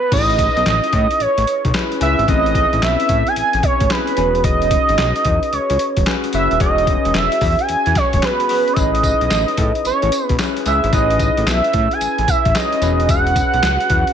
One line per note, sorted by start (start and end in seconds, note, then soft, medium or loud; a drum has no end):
0.00 0.12 B4 loud
0.12 0.49 A1 loud
0.12 0.82 C#4 medium
0.12 0.82 E4 medium
0.12 0.82 G#4 medium
0.12 0.83 B4 medium
0.12 1.23 D#5 loud
0.12 kick loud
0.12 closed hi-hat medium
0.12 crash loud
0.30 closed hi-hat medium
0.39 kick medium
0.39 closed hi-hat medium
0.57 0.64 B1 medium
0.57 closed hi-hat soft
0.66 0.81 A1 medium
0.66 snare loud
0.66 clap medium
0.66 closed hi-hat medium
0.84 closed hi-hat medium
0.93 1.08 A2 loud
0.93 kick loud
0.93 closed hi-hat medium
1.11 closed hi-hat soft
1.20 1.27 A1 soft
1.20 1.75 C#5 loud
1.20 closed hi-hat medium
1.38 1.45 A1 loud
1.38 closed hi-hat medium
1.47 closed hi-hat medium
1.65 1.73 B1 medium
1.65 kick medium
1.65 closed hi-hat medium
1.74 1.94 C#4 medium
1.74 1.94 E4 medium
1.74 1.94 G#4 medium
1.74 1.94 B4 medium
1.74 snare loud
1.74 clap medium
1.74 closed hi-hat medium
1.92 closed hi-hat medium
2.00 2.16 C#2 medium
2.00 2.21 C#4 medium
2.00 2.21 E4 medium
2.00 2.21 G#4 medium
2.00 2.21 B4 medium
2.00 2.27 E5 loud
2.00 closed hi-hat medium
2.19 2.26 G#1 medium
2.19 closed hi-hat soft
2.27 2.65 A1 loud
2.27 2.36 C4 medium
2.27 2.98 E4 medium
2.27 2.98 G#4 medium
2.27 2.98 B4 medium
2.27 2.84 D#5 loud
2.27 kick loud
2.27 closed hi-hat medium
2.34 3.01 C#4 medium
2.46 closed hi-hat medium
2.55 kick loud
2.55 closed hi-hat medium
2.73 2.81 A1 medium
2.73 closed hi-hat soft
2.82 2.97 B1 loud
2.82 3.29 E5 loud
2.82 snare loud
2.82 clap medium
2.82 closed hi-hat medium
3.00 closed hi-hat medium
3.09 3.24 A2 medium
3.09 kick medium
3.09 closed hi-hat medium
3.27 3.65 G#5 loud
3.27 closed hi-hat soft
3.36 3.43 A1 soft
3.36 closed hi-hat medium
3.53 3.62 A1 loud
3.53 closed hi-hat medium
3.63 3.92 C#5 loud
3.63 kick loud
3.63 closed hi-hat medium
3.80 3.89 A1 loud
3.80 kick medium
3.80 closed hi-hat medium
3.89 4.10 C#4 medium
3.89 4.10 E4 medium
3.89 4.10 G#4 medium
3.89 4.44 B4 loud
3.89 4.10 C#5 medium
3.89 snare loud
3.89 clap medium
3.89 closed hi-hat medium
4.07 closed hi-hat soft
4.17 4.77 E1 loud
4.17 5.05 C#4 medium
4.17 5.05 F#4 medium
4.17 5.06 G#4 medium
4.17 5.06 B4 medium
4.17 closed hi-hat medium
4.35 closed hi-hat soft
4.44 5.55 D#5 loud
4.44 kick loud
4.44 closed hi-hat medium
4.62 closed hi-hat medium
4.71 kick loud
4.71 closed hi-hat medium
4.89 4.97 G#1 medium
4.89 closed hi-hat medium
4.98 5.13 B1 loud
4.98 snare loud
4.98 clap medium
4.98 closed hi-hat medium
5.16 closed hi-hat medium
5.25 5.40 E2 medium
5.25 kick medium
5.25 closed hi-hat medium
5.43 closed hi-hat soft
5.53 5.60 C#2 soft
5.53 6.07 C#5 medium
5.53 closed hi-hat medium
5.70 5.78 C#2 medium
5.70 closed hi-hat medium
5.79 closed hi-hat medium
5.97 6.05 E1 medium
5.97 kick medium
5.97 closed hi-hat medium
6.06 6.26 C#4 medium
6.06 6.26 F#4 medium
6.06 6.26 G#4 medium
6.06 6.27 B4 medium
6.06 snare loud
6.06 clap loud
6.06 closed hi-hat medium
6.24 closed hi-hat medium
6.33 6.48 F#1 medium
6.33 6.53 C#4 medium
6.33 6.53 F#4 medium
6.33 6.54 G#4 medium
6.33 6.54 B4 medium
6.33 6.59 E5 medium
6.33 closed hi-hat medium
6.51 6.59 D#1 medium
6.51 closed hi-hat soft
6.60 6.98 E1 loud
6.60 7.31 C#4 medium
6.60 7.31 F#4 medium
6.60 7.31 G#4 medium
6.60 7.31 C#5 medium
6.60 7.17 D#5 loud
6.60 kick loud
6.60 closed hi-hat medium
6.78 closed hi-hat soft
6.87 kick loud
6.87 closed hi-hat medium
7.05 7.13 E1 medium
7.05 closed hi-hat soft
7.14 7.29 E1 loud
7.14 7.62 E5 loud
7.14 snare loud
7.14 clap medium
7.14 closed hi-hat medium
7.32 closed hi-hat medium
7.41 7.56 E2 medium
7.41 kick loud
7.41 open hi-hat medium
7.59 7.98 G#5 loud
7.59 closed hi-hat soft
7.69 7.76 E2 soft
7.69 closed hi-hat medium
7.86 7.94 E2 loud
7.86 closed hi-hat medium
7.95 8.25 C#5 loud
7.95 kick loud
7.95 snare medium
7.95 closed hi-hat medium
8.13 8.21 E1 medium
8.13 kick medium
8.13 closed hi-hat medium
8.22 8.42 C#4 medium
8.22 8.43 F#4 medium
8.22 8.43 G#4 medium
8.22 8.75 B4 loud
8.22 8.43 B4 medium
8.22 snare loud
8.22 clap medium
8.22 closed hi-hat medium
8.40 closed hi-hat medium
8.49 8.69 C#4 medium
8.49 8.70 F#4 medium
8.49 8.70 G#4 medium
8.49 8.70 B4 medium
8.49 open hi-hat medium
8.68 closed hi-hat soft
8.73 9.14 A1 loud
8.73 9.47 C#4 medium
8.73 9.47 E4 medium
8.73 9.47 G#4 medium
8.73 8.80 E5 medium
8.73 kick loud
8.73 closed hi-hat medium
8.73 tambourine medium
8.78 9.47 B4 medium
8.78 9.85 D#5 loud
8.95 closed hi-hat medium
9.03 kick medium
9.03 closed hi-hat medium
9.03 tambourine medium
9.21 9.29 B1 medium
9.21 closed hi-hat medium
9.31 9.45 A1 loud
9.31 snare loud
9.31 clap medium
9.31 closed hi-hat medium
9.31 tambourine medium
9.48 closed hi-hat medium
9.57 9.73 A2 medium
9.57 kick loud
9.57 closed hi-hat medium
9.75 closed hi-hat soft
9.85 9.92 A1 soft
9.85 10.36 C#5 medium
9.85 closed hi-hat medium
9.85 tambourine medium
10.02 10.10 A1 loud
10.02 closed hi-hat medium
10.12 closed hi-hat medium
10.12 tambourine medium
10.29 10.37 B1 medium
10.29 kick medium
10.29 closed hi-hat medium
10.39 10.59 C#4 medium
10.39 10.59 E4 medium
10.39 10.59 G#4 medium
10.39 10.59 B4 medium
10.39 snare loud
10.39 clap medium
10.39 closed hi-hat medium
10.39 tambourine medium
10.57 closed hi-hat medium
10.66 10.81 C#2 loud
10.66 10.86 C#4 medium
10.66 10.86 E4 medium
10.66 10.86 G#4 medium
10.66 10.86 B4 medium
10.66 10.92 E5 medium
10.66 closed hi-hat medium
10.66 tambourine medium
10.84 10.91 G#1 medium
10.84 closed hi-hat soft
10.93 11.30 A1 loud
10.93 11.63 C#4 medium
10.93 11.63 E4 medium
10.93 11.63 G#4 medium
10.93 11.64 B4 medium
10.93 11.49 D#5 loud
10.93 kick loud
10.93 closed hi-hat medium
10.93 tambourine medium
11.10 closed hi-hat soft
11.19 kick loud
11.19 closed hi-hat medium
11.19 tambourine medium
11.37 11.45 A1 medium
11.37 closed hi-hat soft
11.47 11.61 B1 loud
11.47 11.94 E5 loud
11.47 snare loud
11.47 clap medium
11.47 closed hi-hat medium
11.47 tambourine medium
11.64 closed hi-hat medium
11.73 11.89 A2 loud
11.73 kick loud
11.73 closed hi-hat medium
11.91 12.31 G#5 loud
11.91 closed hi-hat soft
12.01 12.08 A1 soft
12.01 closed hi-hat medium
12.01 tambourine medium
12.18 12.26 A1 medium
12.18 closed hi-hat medium
12.28 12.58 E5 loud
12.28 kick loud
12.28 closed hi-hat medium
12.28 tambourine medium
12.45 12.53 A1 loud
12.45 kick medium
12.45 closed hi-hat medium
12.55 12.75 C#4 medium
12.55 12.75 E4 medium
12.55 12.75 G#4 medium
12.55 12.75 C#5 medium
12.55 13.10 D#5 loud
12.55 snare loud
12.55 clap medium
12.55 closed hi-hat medium
12.55 tambourine medium
12.72 closed hi-hat medium
12.82 13.42 E1 loud
12.82 13.70 C#4 medium
12.82 13.70 F#4 medium
12.82 13.70 G#4 medium
12.82 13.71 B4 medium
12.82 closed hi-hat medium
12.82 tambourine medium
13.00 closed hi-hat soft
13.09 14.13 F#5 loud
13.09 kick loud
13.09 closed hi-hat medium
13.09 tambourine medium
13.27 closed hi-hat soft
13.36 kick medium
13.36 closed hi-hat medium
13.36 tambourine medium
13.54 13.61 B1 medium
13.54 closed hi-hat soft
13.63 13.78 C#2 loud
13.63 snare loud
13.63 clap medium
13.63 closed hi-hat medium
13.63 tambourine medium
13.80 closed hi-hat medium
13.90 14.05 E2 loud
13.90 kick loud
13.90 closed hi-hat medium
14.07 closed hi-hat soft